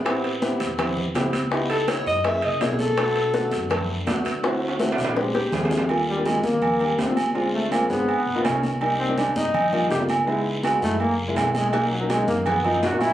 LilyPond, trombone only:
\new Staff \with { instrumentName = "Trombone" } { \time 4/4 \key a \dorian \tempo 4 = 164 r1 | r1 | r1 | r1 |
\key c \minor r8 g8 aes8 bes4. c'8 r8 | r8 a8 bes8 ces'4. des'8 r8 | r8 c'8 d'8 ees'4. g'8 r8 | r4. a8 bes8 des8 fes8 aes8 |
ais8 fis8 aes8 ais8 b8 dis'8 fis'8 fes'8 | }